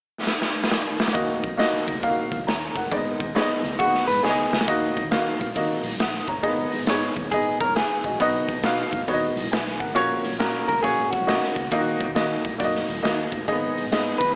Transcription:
0.27 snare
0.42 snare
0.64 snare
0.71 snare
1.00 snare
1.08 snare
1.13 D#2 D#3 A#3 D#4 F#4 D#5, kick, closed hi-hat, low conga
1.29 muted conga
1.43 A#1, kick, closed hi-hat, high conga
1.57 A#3 D#4 F#4 D#5, snare, closed hi-hat, muted conga
1.72 muted fingered electric bass stroke, muted conga
1.86 C#2, kick, closed hi-hat, high conga
2.02 A#3 D#4 F4 F5, kick, closed hi-hat, high conga, low conga
2.09 F#4
2.17 muted conga
2.31 D#2, kick, closed hi-hat, high conga
2.39 C#2, high conga
2.46 D#2 C#5 A#5, snare, closed hi-hat, muted conga
2.75 F#1 A#4 F#5, kick, closed hi-hat, low conga
2.91 G#1 G#2 B3 D#4 G#4 D5, kick, closed hi-hat, muted conga, low conga
2.97 D#5
3.06 muted conga
3.19 D#2, kick, closed hi-hat, high conga
3.35 B3 D#4 G#4 C#5, snare, closed hi-hat
3.41 D#5
3.48 muted fingered electric bass stroke, muted conga
3.63 C#2, closed hi-hat, high conga
3.78 D#2 A#3 D#4 F#4 G#4 F#5, kick, closed hi-hat, muted conga, high conga, low conga
3.85 B3
3.93 snare, muted conga
4.07 G#2 B4, closed hi-hat, high conga
4.15 high conga
4.23 C#2 B3 D#4 G#4 C#5, snare
4.29 D#5
4.38 muted conga
4.53 C#2, snare, low conga
4.61 snare
4.68 D#2 D#3 A#3 D#4 F#4 D#5, kick, closed hi-hat
4.82 muted conga
4.97 kick, closed hi-hat, high conga
5.04 D#2
5.11 D#3 A#3 D#4 F#4 F5, snare, closed hi-hat, muted conga
5.26 muted conga
5.39 A#1, kick, closed hi-hat, high conga
5.55 D#3 A#3 D#4 F#4 D#5, kick, closed hi-hat, muted conga, high conga, low conga
5.83 A#1, closed hi-hat, high conga
5.92 high conga
5.98 A#1 F#5 D#6, snare, closed hi-hat, muted conga
6.14 snare, muted conga
6.28 F#1 C#5 A#5, kick, closed hi-hat, low conga
6.43 G#1 G#2 A#3 D#4 G#4 D#5, kick, closed hi-hat, muted conga
6.48 B3
6.60 muted conga
6.72 closed hi-hat, high conga
6.79 G#1
6.86 G#2 B3 D#4 G#4 C#5, snare, closed hi-hat, muted conga
7.03 muted conga
7.16 D#2, kick, closed hi-hat, high conga
7.31 G#1 B3 D#4 G#4 D#5, kick, closed hi-hat, muted conga, high conga, low conga
7.47 muted conga
7.60 F#1 A#4 C#5 A#5, kick, closed hi-hat, high conga
7.69 high conga
7.76 G#4 B4 G#5, snare, closed hi-hat, muted conga
7.92 muted conga
8.04 G#1 F#4 D#5, kick, closed hi-hat, low conga
8.12 A#1
8.20 B1 B2 B3 D#4 F#4 D#5, kick, closed hi-hat
8.35 muted conga
8.48 kick, closed hi-hat, high conga
8.55 B1
8.63 B2 B3 D#4 F#4 F5, snare, closed hi-hat, muted conga
8.79 muted conga
8.92 F#1, kick, closed hi-hat, high conga
9.08 D#2 B3 D#4 F#4 C#5, kick, closed hi-hat, muted conga, high conga, low conga
9.14 D#5
9.23 muted conga
9.36 B1, closed hi-hat, high conga
9.44 high conga
9.51 B1 B4 G#5, snare, closed hi-hat
9.67 snare, muted conga
9.79 G#1 A#4 F#5, kick, closed hi-hat, low conga
9.95 A#1 A#2 A#3 C#4 F#4 C#5, kick, closed hi-hat, muted conga, low conga
10.10 muted conga
10.24 closed hi-hat, high conga
10.32 A#1
10.39 A#2 A#3 C#4 F#4 A#4, snare, closed hi-hat, muted conga
10.54 muted conga
10.68 C#2 A#4, kick, closed hi-hat, high conga
10.83 A#1 A#3 C#4 F#4 G#4 C#5, kick, closed hi-hat, muted conga, high conga, low conga
10.99 G#1, muted conga
11.11 F#4, kick, closed hi-hat, high conga
11.21 A#1, high conga
11.27 A#1 A#3 C#4 F#4 D#5, snare, closed hi-hat
11.43 snare, muted conga
11.56 C#2, kick, closed hi-hat, low conga
11.71 D#2 D#3 A#3 D#4 F4 D#5, kick, closed hi-hat, muted conga
11.78 F#4
11.87 muted conga
12.00 kick, closed hi-hat, high conga
12.08 D#2
12.15 D#3 A#3 D#4 F#4 D#5, snare, closed hi-hat, muted conga
12.45 A#1, kick, closed hi-hat, high conga
12.58 F#2 A#3 D#4 F#4 D5, kick, closed hi-hat, high conga, low conga
12.64 D#5
12.75 snare, muted conga
12.88 D#2, closed hi-hat, high conga
12.96 high conga
13.03 D#2 A#3 D#4 F#4 D#5, snare, closed hi-hat
13.32 F#1, kick, closed hi-hat, low conga
13.48 G#1 G#2 A#3 D#4 G#4 D#5, kick, closed hi-hat
13.52 B3
13.62 muted conga
13.76 closed hi-hat, high conga
13.85 G#1
13.91 G#2 A#3 D#4 G#4 D#5, snare, closed hi-hat, muted conga
13.97 B3
14.06 muted conga
14.18 D#2 B4, kick, closed hi-hat, high conga

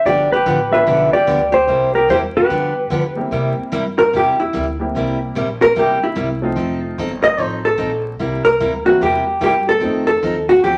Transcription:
0.05 G1 D3 F3 B3 D4 G4 D5
0.32 G4 B4
0.46 A1 D3 F3 B3 D4 G4
0.71 G3 B3 D4 F4 G4 B4 E5
0.86 B1 D3 F3 B3 D4 G4
1.13 G4 D5, muted upright bass stroke
1.27 D2 D3 F3 B3 D4 G4
1.52 G4 C5
1.67 C2 C3 G3 A#3 E4 G4
1.95 G4 A#4
2.08 E2 C3 G3 A#3 E4 G4 C5
2.37 G4 B4
2.50 G2 D3 F3 B3 D4 G4
2.90 D3 F3 B3 D4 G4
3.16 G3 A#3 C4 E4 G4
3.31 C3 G3 A#3 E4 G4
3.58 muted upright bass stroke
3.72 G2 C3 G3 A#3 E4 G4
3.99 A#4
4.13 E2 C3 G3 A#3 E4 G4
4.40 E4
4.53 D2 C3 G3 A#3 E4 G4
4.79 G3 A#3 C4 E4 G4
4.95 C2 C3 G3 A#3 E4 G4
5.35 A#1 C3 G3 A#3 E4 G4
5.62 A#4
5.75 G1 C3 G3 A#3 E4 G4
6.03 E4
6.15 C2 C3 G3 A#3 E4 G4
6.42 F3 A3 C4 D#4 F4
6.56 F1 F3 C4 D#4 A4
6.98 G1 F3 C4 D#4 A4
7.24 D#5
7.38 A1 F3 C4 D#4 A4 C5
7.65 A4
7.78 A#1 F3 C4 D#4 A4
8.19 C2 C3 G3 A#3 E4 G4
8.45 A#4
8.60 D2 C3 G3 A#3 E4 G4
8.85 E3 G3 A#3 C4 E4 F#4
9.01 E2 C3 G3 A#3 E4 G4
9.41 G2 C3 G3 A#3 E4 G4
9.69 A4
9.80 F2 D#3 F3 A3 C4 D#4 A4
10.07 A4
10.22 D#2 F3 C4 D#4 A4
10.49 F#4
10.64 D2 F3 C4 D#4 G4 A4

